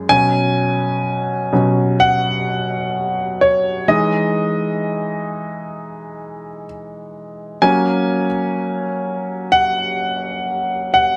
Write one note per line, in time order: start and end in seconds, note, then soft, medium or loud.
0.09 1.51 B2 medium
0.09 1.52 F#3 soft
0.09 1.52 C#4 medium
0.09 2.05 G#5 loud
1.53 1.96 B2 medium
1.53 1.96 F#3 soft
1.53 1.96 C#4 medium
2.00 3.46 F#5 loud
3.41 3.85 C#5 medium
3.88 7.59 E3 medium
3.88 7.59 G#3 medium
3.88 7.60 D#4 medium
3.88 6.66 D#5 medium
7.62 8.25 F#3 medium
7.62 8.26 A#3 medium
7.62 8.26 C#4 medium
7.62 9.57 G#5 medium
9.52 10.92 F#5 loud
10.94 11.17 F#5 medium